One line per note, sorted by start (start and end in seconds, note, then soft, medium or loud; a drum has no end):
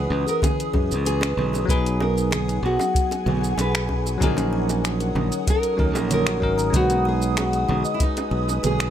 0.00 0.69 E3 medium
0.00 0.70 C#4 medium
0.00 0.24 G#4 loud
0.00 0.10 B4 medium
0.00 0.72 B4 loud
0.00 1.65 B4 medium
0.00 0.71 D#5 medium
0.00 1.65 D#6 medium
0.10 0.24 C#2 loud
0.27 0.35 G#4 medium
0.27 0.44 A#4 medium
0.27 shaker medium
0.42 0.58 G#4 medium
0.42 1.05 G#4 loud
0.42 kick loud
0.42 closed hi-hat medium
0.42 high bongo medium
0.42 low conga medium
0.42 shaker medium
0.60 closed hi-hat soft
0.60 shaker soft
0.73 0.92 F#2 medium
0.73 0.88 G#4 loud
0.73 kick loud
0.73 high bongo medium
0.91 1.34 C#2 medium
0.91 shaker medium
1.05 1.69 G#4 loud
1.05 1.14 B4 medium
1.05 closed hi-hat medium
1.05 shaker medium
1.21 1.37 B4 medium
1.21 finger snap medium
1.21 closed hi-hat soft
1.21 high bongo medium
1.21 shaker soft
1.37 1.64 B1 loud
1.37 low conga medium
1.53 1.62 G#4 medium
1.53 high bongo soft
1.53 shaker medium
1.65 2.60 B1 loud
1.65 3.21 F#3 loud
1.65 3.22 B3 medium
1.65 3.23 D#4 medium
1.65 1.84 F#4 medium
1.65 4.18 G#4 medium
1.65 1.98 B4 loud
1.65 4.18 F#5 medium
1.65 4.19 G#5 medium
1.65 kick loud
1.70 3.24 G#4 loud
1.70 closed hi-hat medium
1.70 shaker medium
1.86 closed hi-hat soft
1.86 shaker soft
2.00 2.15 F#4 loud
2.00 2.33 A#4 medium
2.00 high bongo medium
2.17 shaker medium
2.31 2.41 G#4 medium
2.31 2.65 G#4 medium
2.31 finger snap medium
2.31 closed hi-hat medium
2.31 high bongo soft
2.31 low conga medium
2.31 shaker medium
2.48 2.63 G#4 medium
2.48 closed hi-hat soft
2.48 shaker soft
2.63 2.77 B1 loud
2.63 3.62 F#4 medium
2.79 2.88 F#4 medium
2.79 high bongo medium
2.79 shaker medium
2.95 3.11 F#4 medium
2.95 kick loud
2.95 closed hi-hat medium
2.95 shaker medium
3.11 closed hi-hat soft
3.11 high bongo medium
3.11 shaker soft
3.26 3.53 B1 loud
3.26 3.41 F#4 loud
3.26 low conga medium
3.44 shaker medium
3.57 4.17 B1 medium
3.57 3.67 G#4 medium
3.57 4.18 B4 loud
3.57 closed hi-hat medium
3.57 high bongo medium
3.57 shaker medium
3.74 3.89 G#4 medium
3.74 finger snap medium
3.74 closed hi-hat soft
3.74 shaker soft
3.89 kick medium
3.89 high bongo medium
4.06 4.14 F#4 medium
4.06 shaker medium
4.18 5.12 A#1 loud
4.18 5.74 F#3 medium
4.18 5.75 C#4 medium
4.18 4.37 F#4 medium
4.18 8.90 D#6 medium
4.18 kick loud
4.22 5.76 D#4 medium
4.22 5.49 G#4 loud
4.22 5.77 A#4 loud
4.22 6.72 C#5 medium
4.22 6.72 F#5 medium
4.22 closed hi-hat medium
4.22 low conga medium
4.22 shaker medium
4.37 closed hi-hat soft
4.37 high bongo medium
4.37 shaker soft
4.53 4.67 F#4 loud
4.69 closed hi-hat soft
4.69 high bongo medium
4.69 shaker medium
4.84 4.93 A#4 medium
4.84 finger snap medium
4.84 closed hi-hat medium
4.84 shaker medium
5.00 5.15 A#4 medium
5.00 closed hi-hat soft
5.00 shaker soft
5.15 5.29 A#1 loud
5.15 high bongo medium
5.15 low conga medium
5.32 5.40 F#4 medium
5.32 closed hi-hat soft
5.32 shaker medium
5.47 5.63 F#4 medium
5.47 5.99 A#4 loud
5.47 kick loud
5.47 closed hi-hat medium
5.47 high bongo medium
5.47 shaker medium
5.63 closed hi-hat soft
5.63 shaker soft
5.77 5.96 D#2 medium
5.77 6.38 F#3 medium
5.77 6.38 C#4 medium
5.77 6.39 D#4 medium
5.77 5.94 A#4 medium
5.77 6.39 A#4 loud
5.77 kick loud
5.95 6.39 A#1 medium
5.95 6.10 F#4 loud
5.95 6.12 G#4 loud
5.95 high bongo medium
5.95 shaker medium
6.11 6.76 A#4 loud
6.11 6.20 C#5 loud
6.11 closed hi-hat medium
6.11 low conga medium
6.11 shaker medium
6.27 6.41 F#4 loud
6.27 finger snap medium
6.27 closed hi-hat soft
6.27 high bongo medium
6.27 shaker soft
6.40 6.69 G#1 medium
6.40 6.69 F#3 medium
6.40 6.70 C#4 medium
6.40 6.70 D#4 medium
6.40 6.71 A#4 loud
6.40 kick medium
6.58 6.73 A#5 medium
6.58 shaker medium
6.70 7.65 B1 medium
6.70 8.26 G#3 loud
6.70 8.27 D#4 medium
6.70 6.89 F#4 medium
6.70 8.28 F#4 medium
6.70 8.90 B4 medium
6.70 8.90 G#5 medium
6.70 kick loud
6.70 closed hi-hat medium
6.70 low conga medium
6.70 shaker medium
6.76 7.08 F#4 loud
6.76 8.29 B4 loud
6.90 closed hi-hat soft
6.90 high bongo soft
6.90 shaker soft
7.05 7.20 F#4 loud
7.05 7.36 G#4 medium
7.22 shaker medium
7.37 7.94 F#4 medium
7.37 7.46 G#4 medium
7.37 finger snap medium
7.37 closed hi-hat medium
7.37 high bongo medium
7.37 shaker medium
7.53 7.68 G#4 medium
7.53 closed hi-hat soft
7.53 shaker soft
7.69 7.83 B1 loud
7.69 high bongo soft
7.69 low conga medium
7.85 7.99 D#5 medium
7.85 shaker medium
7.94 8.01 E4 medium
8.00 8.61 D#4 medium
8.00 8.16 F#4 medium
8.00 kick loud
8.00 closed hi-hat medium
8.00 shaker medium
8.17 closed hi-hat soft
8.17 high bongo medium
8.17 shaker soft
8.31 8.58 B1 loud
8.31 8.46 F#4 loud
8.49 high bongo medium
8.49 shaker medium
8.63 8.90 B1 medium
8.63 8.72 G#4 medium
8.63 8.90 G#4 medium
8.63 closed hi-hat medium
8.63 low conga medium
8.63 shaker medium
8.79 8.90 G#4 medium
8.79 finger snap medium
8.79 closed hi-hat soft
8.79 shaker soft